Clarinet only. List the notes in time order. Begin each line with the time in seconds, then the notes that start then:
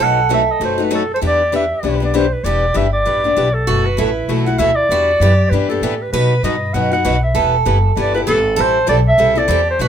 0.03 F#5
0.34 E5
0.51 D#5
0.64 C5
0.84 B4
0.95 A4
1.14 C5
1.27 D5
1.56 E5
2.04 D5
2.16 C5
2.33 B4
2.44 D5
2.77 E5
2.93 D5
3.54 A4
3.86 B4
4.47 F#5
4.59 E5
4.76 D5
5.50 B4
5.69 A4
6.02 B4
6.13 B4
6.44 D#5
6.74 F#5
6.93 F#5
7.24 E5
8.00 D5
8.15 B4
8.28 A4
8.61 C5
8.89 D5
9.08 E5
9.38 D5
9.70 C5
9.82 B4